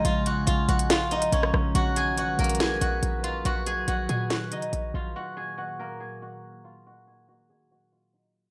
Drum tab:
HH |x---x---x---x-x-x---x-x-x-------|x---x---x---xxxxx---x---x---x---|x---x---x---x---x---x-x-x-------|--------------------------------|
SD |----------------o---------r-r---|----------------o---------------|----------------o---------------|--------------------------------|

HH |--------------------------------|
SD |--------------------------------|